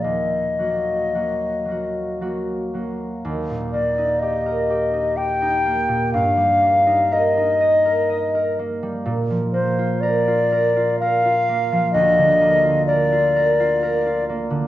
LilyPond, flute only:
\new Staff \with { instrumentName = "Flute" } { \time 3/4 \key ees \minor \tempo 4 = 62 ees''2 r4 | \key ees \major r8 d''8 ees''4 g''4 | f''4 ees''4. r8 | r8 c''8 d''4 f''4 |
ees''4 d''4. r8 | }